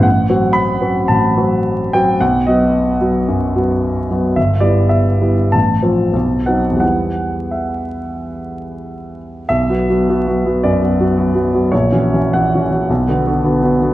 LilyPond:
<<
  \new Staff \with { instrumentName = "Grand piano" } { \time 4/4 \key e \minor \tempo 4 = 108 fis''4 b''4 a''4. g''8 | fis''8 dis''2. r8 | e''8 d''8 e''4 a''4. fis''8 | fis''4 e''2~ e''8 r8 |
\key b \minor e''2 d''2 | cis''4 fis''2~ fis''8 r8 | }
  \new Staff \with { instrumentName = "Grand piano" } { \time 4/4 \key e \minor a,,8 <fis c' fis'>4 <fis c' fis'>8 a,,8 <fis c' fis'>4 <fis c' fis'>8 | b,,8 <fis b fis'>4 <fis b fis'>8 fis,8 <fis b fis'>4 <fis b fis'>8 | g,,8 <g b e'>4 <g b e'>8 a,,8 <f c' f'>8 b,,8 <fis c' dis'>8 | <e, g b e'>1 |
\key b \minor \tuplet 3/2 { b,,8 <fis b fis'>8 <fis b fis'>8 <fis b fis'>8 <fis b fis'>8 <fis b fis'>8 fis,8 <fis b fis'>8 <fis b fis'>8 <fis b fis'>8 <fis b fis'>8 <fis b fis'>8 } | \tuplet 3/2 { ais,,8 <e cis' fis'>8 <e cis' fis'>8 <e cis' fis'>8 <e cis' fis'>8 <e cis' fis'>8 b,,8 <d b fis'>8 <d b fis'>8 <d b fis'>8 <d b fis'>8 <d b fis'>8 } | }
>>